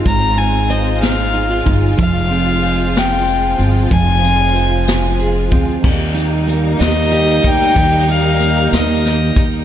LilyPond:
<<
  \new Staff \with { instrumentName = "Fiddle" } { \time 6/8 \key ees \major \tempo 4. = 62 bes''8 aes''8 ees''8 f''4 r8 | f''4. g''4 r8 | aes''2 r4 | r4. ees''4 g''8~ |
g''8 f''4 ees''4 r8 | }
  \new Staff \with { instrumentName = "Steel-string acoustic guitar" } { \time 6/8 \key ees \major <aes ees' f' c''>8 ees'8 c''8 ees'8 ees'16 f'16 ees'8 | f8 c'8 c''4. c'8 | f8 c'8 c''4 aes'8 c'8 | g'8 ees'8 bes8 ees'8 g'8 ees'8 |
<ees g'>8 ees'8 bes8 ees'8 g'8 ees'8 | }
  \new Staff \with { instrumentName = "String section" } { \time 6/8 \key ees \major << { f'2.~ | f'2.~ | f'2. | ees'2.~ |
ees'2. | } \\ { <aes c'>2. | f2.~ | f2. | <g bes>2.~ |
<g bes>2. | } >> }
  \new Staff \with { instrumentName = "Upright bass" } { \clef bass \time 6/8 \key ees \major aes,,2~ aes,,8 g,,8 | f,,2~ f,,8 g,,8 | f,,2~ f,,8 d,8 | ees,4. ees,4 d,8 |
ees,4. ees,4 ees,8 | }
  \new DrumStaff \with { instrumentName = "Drums" } \drummode { \time 6/8 <hh bd>8 hh8 hh8 <hh sn>8 hh8 <hh bd>8 | <hh bd>8 hh8 hh8 <hh sn>8 hh8 hh8 | <hh bd>8 hh8 hh8 <hh sn>8 hh8 <hh bd>8 | <cymc bd>8 hh8 hh8 <hh sn>8 hh8 <hh bd>8 |
<hh bd>8 hh8 hh8 <hh sn>8 <hh sn>8 <hh bd>8 | }
>>